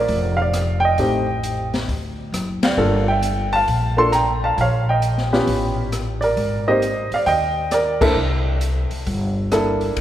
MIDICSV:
0, 0, Header, 1, 5, 480
1, 0, Start_track
1, 0, Tempo, 449102
1, 1053, Time_signature, 4, 2, 24, 8
1, 10698, End_track
2, 0, Start_track
2, 0, Title_t, "Grand piano"
2, 0, Program_c, 0, 0
2, 0, Note_on_c, 0, 70, 65
2, 0, Note_on_c, 0, 74, 93
2, 365, Note_off_c, 0, 74, 0
2, 392, Note_on_c, 0, 77, 95
2, 394, Note_off_c, 0, 70, 0
2, 446, Note_on_c, 0, 74, 73
2, 847, Note_off_c, 0, 77, 0
2, 857, Note_on_c, 0, 79, 103
2, 876, Note_off_c, 0, 74, 0
2, 908, Note_on_c, 0, 75, 80
2, 1060, Note_on_c, 0, 57, 58
2, 1061, Note_on_c, 0, 60, 54
2, 1064, Note_on_c, 0, 67, 69
2, 1065, Note_on_c, 0, 63, 58
2, 1342, Note_off_c, 0, 57, 0
2, 1342, Note_off_c, 0, 60, 0
2, 1344, Note_off_c, 0, 63, 0
2, 1344, Note_off_c, 0, 67, 0
2, 1791, Note_off_c, 0, 79, 0
2, 1816, Note_off_c, 0, 75, 0
2, 2818, Note_on_c, 0, 77, 79
2, 2843, Note_on_c, 0, 74, 63
2, 2965, Note_on_c, 0, 58, 69
2, 2970, Note_on_c, 0, 62, 64
2, 2971, Note_on_c, 0, 65, 66
2, 2975, Note_on_c, 0, 69, 77
2, 3255, Note_off_c, 0, 58, 0
2, 3258, Note_off_c, 0, 62, 0
2, 3258, Note_off_c, 0, 65, 0
2, 3260, Note_off_c, 0, 69, 0
2, 3261, Note_off_c, 0, 77, 0
2, 3274, Note_off_c, 0, 74, 0
2, 3294, Note_on_c, 0, 79, 89
2, 3316, Note_on_c, 0, 76, 65
2, 3751, Note_off_c, 0, 76, 0
2, 3770, Note_on_c, 0, 81, 108
2, 3787, Note_off_c, 0, 79, 0
2, 3800, Note_on_c, 0, 77, 75
2, 4233, Note_off_c, 0, 77, 0
2, 4245, Note_on_c, 0, 58, 75
2, 4254, Note_on_c, 0, 62, 69
2, 4255, Note_on_c, 0, 65, 61
2, 4257, Note_on_c, 0, 84, 104
2, 4258, Note_on_c, 0, 69, 85
2, 4262, Note_off_c, 0, 81, 0
2, 4278, Note_on_c, 0, 81, 78
2, 4395, Note_off_c, 0, 58, 0
2, 4400, Note_off_c, 0, 62, 0
2, 4400, Note_off_c, 0, 65, 0
2, 4402, Note_off_c, 0, 69, 0
2, 4407, Note_on_c, 0, 82, 100
2, 4417, Note_off_c, 0, 81, 0
2, 4422, Note_off_c, 0, 84, 0
2, 4430, Note_on_c, 0, 79, 75
2, 4705, Note_off_c, 0, 82, 0
2, 4718, Note_off_c, 0, 79, 0
2, 4745, Note_on_c, 0, 81, 90
2, 4757, Note_on_c, 0, 77, 70
2, 4890, Note_off_c, 0, 81, 0
2, 4897, Note_off_c, 0, 77, 0
2, 4926, Note_on_c, 0, 77, 99
2, 4937, Note_on_c, 0, 73, 68
2, 5212, Note_off_c, 0, 73, 0
2, 5229, Note_on_c, 0, 79, 85
2, 5236, Note_off_c, 0, 77, 0
2, 5240, Note_on_c, 0, 75, 67
2, 5694, Note_on_c, 0, 59, 75
2, 5695, Note_on_c, 0, 61, 67
2, 5697, Note_on_c, 0, 65, 66
2, 5700, Note_on_c, 0, 67, 76
2, 6137, Note_off_c, 0, 79, 0
2, 6143, Note_off_c, 0, 75, 0
2, 6303, Note_off_c, 0, 59, 0
2, 6304, Note_off_c, 0, 61, 0
2, 6305, Note_off_c, 0, 65, 0
2, 6306, Note_off_c, 0, 67, 0
2, 6635, Note_on_c, 0, 74, 85
2, 6665, Note_on_c, 0, 70, 68
2, 7089, Note_off_c, 0, 74, 0
2, 7105, Note_off_c, 0, 70, 0
2, 7135, Note_on_c, 0, 58, 63
2, 7138, Note_on_c, 0, 75, 96
2, 7139, Note_on_c, 0, 63, 59
2, 7142, Note_on_c, 0, 60, 60
2, 7144, Note_on_c, 0, 67, 79
2, 7166, Note_on_c, 0, 72, 75
2, 7280, Note_off_c, 0, 58, 0
2, 7282, Note_off_c, 0, 63, 0
2, 7283, Note_off_c, 0, 60, 0
2, 7284, Note_off_c, 0, 67, 0
2, 7581, Note_off_c, 0, 75, 0
2, 7596, Note_off_c, 0, 72, 0
2, 7631, Note_on_c, 0, 77, 89
2, 7648, Note_on_c, 0, 74, 72
2, 7763, Note_on_c, 0, 79, 108
2, 7782, Note_off_c, 0, 74, 0
2, 7783, Note_on_c, 0, 75, 79
2, 7789, Note_off_c, 0, 77, 0
2, 8225, Note_off_c, 0, 75, 0
2, 8251, Note_on_c, 0, 74, 89
2, 8263, Note_off_c, 0, 79, 0
2, 8273, Note_on_c, 0, 70, 71
2, 8558, Note_off_c, 0, 70, 0
2, 8560, Note_on_c, 0, 58, 86
2, 8564, Note_on_c, 0, 62, 74
2, 8566, Note_on_c, 0, 64, 72
2, 8567, Note_on_c, 0, 69, 93
2, 8579, Note_off_c, 0, 74, 0
2, 8580, Note_on_c, 0, 76, 85
2, 8603, Note_on_c, 0, 72, 65
2, 8712, Note_off_c, 0, 58, 0
2, 8714, Note_off_c, 0, 62, 0
2, 8715, Note_off_c, 0, 64, 0
2, 8715, Note_off_c, 0, 69, 0
2, 10135, Note_off_c, 0, 76, 0
2, 10146, Note_off_c, 0, 72, 0
2, 10173, Note_on_c, 0, 58, 71
2, 10173, Note_on_c, 0, 62, 64
2, 10182, Note_on_c, 0, 64, 69
2, 10183, Note_on_c, 0, 69, 85
2, 10652, Note_off_c, 0, 58, 0
2, 10652, Note_off_c, 0, 62, 0
2, 10657, Note_off_c, 0, 64, 0
2, 10657, Note_off_c, 0, 69, 0
2, 10698, End_track
3, 0, Start_track
3, 0, Title_t, "Upright bass"
3, 0, Program_c, 1, 32
3, 88, Note_on_c, 1, 29, 92
3, 1008, Note_off_c, 1, 29, 0
3, 1047, Note_on_c, 1, 33, 83
3, 1968, Note_off_c, 1, 33, 0
3, 2013, Note_on_c, 1, 38, 77
3, 2460, Note_off_c, 1, 38, 0
3, 2484, Note_on_c, 1, 30, 78
3, 2935, Note_off_c, 1, 30, 0
3, 2963, Note_on_c, 1, 31, 88
3, 3886, Note_off_c, 1, 31, 0
3, 3929, Note_on_c, 1, 34, 89
3, 4849, Note_off_c, 1, 34, 0
3, 4891, Note_on_c, 1, 34, 90
3, 5810, Note_off_c, 1, 34, 0
3, 5847, Note_on_c, 1, 33, 83
3, 6768, Note_off_c, 1, 33, 0
3, 6804, Note_on_c, 1, 32, 80
3, 7563, Note_off_c, 1, 32, 0
3, 7768, Note_on_c, 1, 39, 87
3, 8688, Note_off_c, 1, 39, 0
3, 8726, Note_on_c, 1, 36, 92
3, 9483, Note_off_c, 1, 36, 0
3, 9687, Note_on_c, 1, 31, 90
3, 10606, Note_off_c, 1, 31, 0
3, 10654, Note_on_c, 1, 33, 73
3, 10698, Note_off_c, 1, 33, 0
3, 10698, End_track
4, 0, Start_track
4, 0, Title_t, "Muted upright bass strokes"
4, 7600, Note_on_c, 9, 29, 46
4, 7707, Note_off_c, 9, 29, 0
4, 9526, Note_on_c, 9, 29, 44
4, 9633, Note_off_c, 9, 29, 0
4, 10698, End_track
5, 0, Start_track
5, 0, Title_t, "Drums"
5, 90, Note_on_c, 9, 36, 32
5, 90, Note_on_c, 9, 46, 44
5, 197, Note_off_c, 9, 36, 0
5, 197, Note_off_c, 9, 46, 0
5, 572, Note_on_c, 9, 42, 62
5, 574, Note_on_c, 9, 37, 64
5, 679, Note_off_c, 9, 42, 0
5, 681, Note_off_c, 9, 37, 0
5, 1047, Note_on_c, 9, 46, 48
5, 1050, Note_on_c, 9, 36, 33
5, 1153, Note_off_c, 9, 46, 0
5, 1157, Note_off_c, 9, 36, 0
5, 1533, Note_on_c, 9, 42, 56
5, 1640, Note_off_c, 9, 42, 0
5, 1856, Note_on_c, 9, 46, 38
5, 1858, Note_on_c, 9, 38, 47
5, 1963, Note_off_c, 9, 46, 0
5, 1965, Note_off_c, 9, 38, 0
5, 2013, Note_on_c, 9, 36, 33
5, 2018, Note_on_c, 9, 46, 43
5, 2120, Note_off_c, 9, 36, 0
5, 2125, Note_off_c, 9, 46, 0
5, 2498, Note_on_c, 9, 42, 58
5, 2501, Note_on_c, 9, 37, 63
5, 2605, Note_off_c, 9, 42, 0
5, 2607, Note_off_c, 9, 37, 0
5, 2809, Note_on_c, 9, 51, 64
5, 2811, Note_on_c, 9, 38, 85
5, 2916, Note_off_c, 9, 51, 0
5, 2918, Note_off_c, 9, 38, 0
5, 3447, Note_on_c, 9, 42, 61
5, 3554, Note_off_c, 9, 42, 0
5, 3768, Note_on_c, 9, 46, 38
5, 3875, Note_off_c, 9, 46, 0
5, 3930, Note_on_c, 9, 46, 49
5, 3931, Note_on_c, 9, 36, 31
5, 4037, Note_off_c, 9, 46, 0
5, 4038, Note_off_c, 9, 36, 0
5, 4411, Note_on_c, 9, 42, 60
5, 4413, Note_on_c, 9, 37, 63
5, 4517, Note_off_c, 9, 42, 0
5, 4520, Note_off_c, 9, 37, 0
5, 4892, Note_on_c, 9, 36, 32
5, 4893, Note_on_c, 9, 46, 46
5, 4999, Note_off_c, 9, 36, 0
5, 5000, Note_off_c, 9, 46, 0
5, 5367, Note_on_c, 9, 42, 54
5, 5474, Note_off_c, 9, 42, 0
5, 5534, Note_on_c, 9, 38, 33
5, 5641, Note_off_c, 9, 38, 0
5, 5698, Note_on_c, 9, 38, 49
5, 5804, Note_off_c, 9, 38, 0
5, 5850, Note_on_c, 9, 46, 47
5, 5853, Note_on_c, 9, 36, 31
5, 5957, Note_off_c, 9, 46, 0
5, 5959, Note_off_c, 9, 36, 0
5, 6331, Note_on_c, 9, 42, 55
5, 6333, Note_on_c, 9, 37, 61
5, 6438, Note_off_c, 9, 42, 0
5, 6440, Note_off_c, 9, 37, 0
5, 6650, Note_on_c, 9, 46, 45
5, 6757, Note_off_c, 9, 46, 0
5, 6808, Note_on_c, 9, 46, 50
5, 6810, Note_on_c, 9, 36, 35
5, 6915, Note_off_c, 9, 46, 0
5, 6917, Note_off_c, 9, 36, 0
5, 7292, Note_on_c, 9, 42, 54
5, 7398, Note_off_c, 9, 42, 0
5, 7607, Note_on_c, 9, 46, 42
5, 7714, Note_off_c, 9, 46, 0
5, 7765, Note_on_c, 9, 46, 50
5, 7768, Note_on_c, 9, 36, 35
5, 7872, Note_off_c, 9, 46, 0
5, 7875, Note_off_c, 9, 36, 0
5, 8243, Note_on_c, 9, 42, 63
5, 8246, Note_on_c, 9, 37, 67
5, 8350, Note_off_c, 9, 42, 0
5, 8352, Note_off_c, 9, 37, 0
5, 8563, Note_on_c, 9, 36, 84
5, 8566, Note_on_c, 9, 49, 76
5, 8670, Note_off_c, 9, 36, 0
5, 8673, Note_off_c, 9, 49, 0
5, 9201, Note_on_c, 9, 42, 57
5, 9308, Note_off_c, 9, 42, 0
5, 9520, Note_on_c, 9, 46, 45
5, 9627, Note_off_c, 9, 46, 0
5, 9688, Note_on_c, 9, 46, 48
5, 9690, Note_on_c, 9, 36, 35
5, 9795, Note_off_c, 9, 46, 0
5, 9797, Note_off_c, 9, 36, 0
5, 10171, Note_on_c, 9, 42, 58
5, 10173, Note_on_c, 9, 37, 67
5, 10278, Note_off_c, 9, 42, 0
5, 10280, Note_off_c, 9, 37, 0
5, 10484, Note_on_c, 9, 46, 42
5, 10591, Note_off_c, 9, 46, 0
5, 10651, Note_on_c, 9, 51, 56
5, 10652, Note_on_c, 9, 36, 22
5, 10698, Note_off_c, 9, 36, 0
5, 10698, Note_off_c, 9, 51, 0
5, 10698, End_track
0, 0, End_of_file